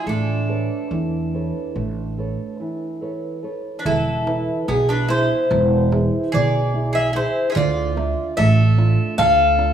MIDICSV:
0, 0, Header, 1, 6, 480
1, 0, Start_track
1, 0, Tempo, 840336
1, 37, Time_signature, 9, 3, 24, 8
1, 2677, Tempo, 816327
1, 5645, End_track
2, 0, Start_track
2, 0, Title_t, "Bouzouki"
2, 0, Program_c, 0, 25
2, 52, Note_on_c, 0, 62, 74
2, 1709, Note_off_c, 0, 62, 0
2, 2167, Note_on_c, 0, 71, 63
2, 2203, Note_off_c, 0, 71, 0
2, 2205, Note_on_c, 0, 69, 73
2, 2678, Note_off_c, 0, 69, 0
2, 2680, Note_on_c, 0, 68, 64
2, 2792, Note_off_c, 0, 68, 0
2, 2802, Note_on_c, 0, 71, 80
2, 2913, Note_off_c, 0, 71, 0
2, 2921, Note_on_c, 0, 72, 90
2, 3624, Note_off_c, 0, 72, 0
2, 3652, Note_on_c, 0, 74, 79
2, 3987, Note_off_c, 0, 74, 0
2, 4007, Note_on_c, 0, 76, 90
2, 4119, Note_off_c, 0, 76, 0
2, 4133, Note_on_c, 0, 72, 84
2, 4338, Note_off_c, 0, 72, 0
2, 4342, Note_on_c, 0, 76, 69
2, 4370, Note_off_c, 0, 76, 0
2, 4372, Note_on_c, 0, 74, 92
2, 4824, Note_off_c, 0, 74, 0
2, 4842, Note_on_c, 0, 76, 97
2, 5295, Note_off_c, 0, 76, 0
2, 5319, Note_on_c, 0, 77, 116
2, 5645, Note_off_c, 0, 77, 0
2, 5645, End_track
3, 0, Start_track
3, 0, Title_t, "Mandolin"
3, 0, Program_c, 1, 25
3, 39, Note_on_c, 1, 69, 64
3, 1703, Note_off_c, 1, 69, 0
3, 2165, Note_on_c, 1, 62, 46
3, 2199, Note_off_c, 1, 62, 0
3, 2204, Note_on_c, 1, 64, 77
3, 2655, Note_off_c, 1, 64, 0
3, 2674, Note_on_c, 1, 59, 68
3, 2789, Note_off_c, 1, 59, 0
3, 2795, Note_on_c, 1, 62, 65
3, 2909, Note_off_c, 1, 62, 0
3, 2911, Note_on_c, 1, 64, 71
3, 3619, Note_off_c, 1, 64, 0
3, 3638, Note_on_c, 1, 68, 87
3, 3980, Note_off_c, 1, 68, 0
3, 3995, Note_on_c, 1, 68, 72
3, 4111, Note_off_c, 1, 68, 0
3, 4113, Note_on_c, 1, 64, 73
3, 4308, Note_off_c, 1, 64, 0
3, 4330, Note_on_c, 1, 68, 65
3, 4358, Note_off_c, 1, 68, 0
3, 4360, Note_on_c, 1, 65, 84
3, 4818, Note_off_c, 1, 65, 0
3, 4844, Note_on_c, 1, 69, 90
3, 5296, Note_off_c, 1, 69, 0
3, 5325, Note_on_c, 1, 69, 84
3, 5645, Note_off_c, 1, 69, 0
3, 5645, End_track
4, 0, Start_track
4, 0, Title_t, "Nylon-string guitar"
4, 0, Program_c, 2, 24
4, 37, Note_on_c, 2, 57, 57
4, 280, Note_on_c, 2, 69, 54
4, 283, Note_on_c, 2, 71, 42
4, 283, Note_on_c, 2, 73, 51
4, 507, Note_off_c, 2, 57, 0
4, 521, Note_on_c, 2, 52, 68
4, 667, Note_off_c, 2, 69, 0
4, 668, Note_off_c, 2, 71, 0
4, 669, Note_off_c, 2, 73, 0
4, 766, Note_on_c, 2, 69, 49
4, 768, Note_on_c, 2, 71, 45
4, 769, Note_on_c, 2, 73, 53
4, 990, Note_off_c, 2, 52, 0
4, 1007, Note_on_c, 2, 57, 58
4, 1150, Note_off_c, 2, 69, 0
4, 1151, Note_off_c, 2, 71, 0
4, 1152, Note_off_c, 2, 73, 0
4, 1246, Note_on_c, 2, 69, 45
4, 1251, Note_on_c, 2, 71, 39
4, 1252, Note_on_c, 2, 73, 52
4, 1472, Note_off_c, 2, 57, 0
4, 1486, Note_on_c, 2, 52, 66
4, 1630, Note_off_c, 2, 69, 0
4, 1631, Note_off_c, 2, 71, 0
4, 1633, Note_off_c, 2, 73, 0
4, 1720, Note_on_c, 2, 69, 48
4, 1723, Note_on_c, 2, 71, 42
4, 1725, Note_on_c, 2, 73, 47
4, 1949, Note_off_c, 2, 52, 0
4, 1951, Note_off_c, 2, 69, 0
4, 1955, Note_off_c, 2, 71, 0
4, 1956, Note_off_c, 2, 73, 0
4, 1958, Note_on_c, 2, 69, 41
4, 1961, Note_on_c, 2, 71, 39
4, 1964, Note_on_c, 2, 73, 54
4, 2151, Note_off_c, 2, 69, 0
4, 2153, Note_off_c, 2, 71, 0
4, 2154, Note_off_c, 2, 73, 0
4, 2202, Note_on_c, 2, 52, 60
4, 2436, Note_on_c, 2, 64, 54
4, 2441, Note_on_c, 2, 71, 58
4, 2663, Note_off_c, 2, 52, 0
4, 2674, Note_on_c, 2, 47, 67
4, 2821, Note_off_c, 2, 64, 0
4, 2824, Note_off_c, 2, 71, 0
4, 2917, Note_on_c, 2, 64, 54
4, 2919, Note_on_c, 2, 68, 47
4, 3147, Note_off_c, 2, 47, 0
4, 3161, Note_on_c, 2, 52, 63
4, 3306, Note_off_c, 2, 64, 0
4, 3308, Note_off_c, 2, 68, 0
4, 3402, Note_on_c, 2, 64, 50
4, 3402, Note_on_c, 2, 68, 44
4, 3632, Note_off_c, 2, 52, 0
4, 3643, Note_on_c, 2, 47, 68
4, 3789, Note_off_c, 2, 64, 0
4, 3790, Note_off_c, 2, 68, 0
4, 3883, Note_on_c, 2, 68, 48
4, 3885, Note_on_c, 2, 64, 50
4, 4112, Note_off_c, 2, 47, 0
4, 4118, Note_off_c, 2, 64, 0
4, 4121, Note_off_c, 2, 68, 0
4, 4125, Note_on_c, 2, 64, 50
4, 4128, Note_on_c, 2, 68, 45
4, 4318, Note_off_c, 2, 64, 0
4, 4320, Note_off_c, 2, 68, 0
4, 4366, Note_on_c, 2, 50, 73
4, 4600, Note_off_c, 2, 50, 0
4, 4603, Note_on_c, 2, 62, 54
4, 4605, Note_on_c, 2, 76, 48
4, 4608, Note_on_c, 2, 65, 64
4, 4843, Note_on_c, 2, 57, 70
4, 4985, Note_off_c, 2, 62, 0
4, 4987, Note_off_c, 2, 76, 0
4, 4988, Note_off_c, 2, 65, 0
4, 5081, Note_on_c, 2, 62, 54
4, 5085, Note_on_c, 2, 65, 64
4, 5305, Note_off_c, 2, 57, 0
4, 5318, Note_on_c, 2, 50, 68
4, 5461, Note_off_c, 2, 62, 0
4, 5464, Note_off_c, 2, 65, 0
4, 5553, Note_on_c, 2, 62, 50
4, 5558, Note_on_c, 2, 65, 48
4, 5645, Note_off_c, 2, 50, 0
4, 5645, Note_off_c, 2, 62, 0
4, 5645, Note_off_c, 2, 65, 0
4, 5645, End_track
5, 0, Start_track
5, 0, Title_t, "Upright bass"
5, 0, Program_c, 3, 32
5, 36, Note_on_c, 3, 33, 83
5, 376, Note_off_c, 3, 33, 0
5, 519, Note_on_c, 3, 40, 98
5, 858, Note_off_c, 3, 40, 0
5, 1003, Note_on_c, 3, 33, 99
5, 1340, Note_off_c, 3, 33, 0
5, 2201, Note_on_c, 3, 28, 94
5, 2534, Note_off_c, 3, 28, 0
5, 2674, Note_on_c, 3, 35, 95
5, 3015, Note_off_c, 3, 35, 0
5, 3159, Note_on_c, 3, 28, 117
5, 3499, Note_off_c, 3, 28, 0
5, 3647, Note_on_c, 3, 35, 103
5, 4152, Note_off_c, 3, 35, 0
5, 4369, Note_on_c, 3, 38, 106
5, 4703, Note_off_c, 3, 38, 0
5, 4850, Note_on_c, 3, 33, 100
5, 5181, Note_off_c, 3, 33, 0
5, 5324, Note_on_c, 3, 38, 121
5, 5645, Note_off_c, 3, 38, 0
5, 5645, End_track
6, 0, Start_track
6, 0, Title_t, "Darbuka"
6, 2201, Note_on_c, 9, 64, 98
6, 2259, Note_off_c, 9, 64, 0
6, 2440, Note_on_c, 9, 63, 78
6, 2497, Note_off_c, 9, 63, 0
6, 2561, Note_on_c, 9, 63, 24
6, 2618, Note_off_c, 9, 63, 0
6, 2676, Note_on_c, 9, 63, 75
6, 2734, Note_off_c, 9, 63, 0
6, 2919, Note_on_c, 9, 63, 73
6, 2977, Note_off_c, 9, 63, 0
6, 3163, Note_on_c, 9, 63, 72
6, 3222, Note_off_c, 9, 63, 0
6, 3286, Note_on_c, 9, 63, 28
6, 3345, Note_off_c, 9, 63, 0
6, 3404, Note_on_c, 9, 63, 77
6, 3463, Note_off_c, 9, 63, 0
6, 3646, Note_on_c, 9, 64, 95
6, 3705, Note_off_c, 9, 64, 0
6, 4007, Note_on_c, 9, 63, 28
6, 4065, Note_off_c, 9, 63, 0
6, 4131, Note_on_c, 9, 63, 70
6, 4190, Note_off_c, 9, 63, 0
6, 4365, Note_on_c, 9, 64, 96
6, 4424, Note_off_c, 9, 64, 0
6, 4609, Note_on_c, 9, 63, 74
6, 4668, Note_off_c, 9, 63, 0
6, 4731, Note_on_c, 9, 63, 26
6, 4790, Note_off_c, 9, 63, 0
6, 4851, Note_on_c, 9, 63, 62
6, 4909, Note_off_c, 9, 63, 0
6, 4970, Note_on_c, 9, 63, 25
6, 5029, Note_off_c, 9, 63, 0
6, 5087, Note_on_c, 9, 63, 64
6, 5146, Note_off_c, 9, 63, 0
6, 5325, Note_on_c, 9, 63, 65
6, 5383, Note_off_c, 9, 63, 0
6, 5445, Note_on_c, 9, 63, 26
6, 5504, Note_off_c, 9, 63, 0
6, 5560, Note_on_c, 9, 63, 64
6, 5618, Note_off_c, 9, 63, 0
6, 5645, End_track
0, 0, End_of_file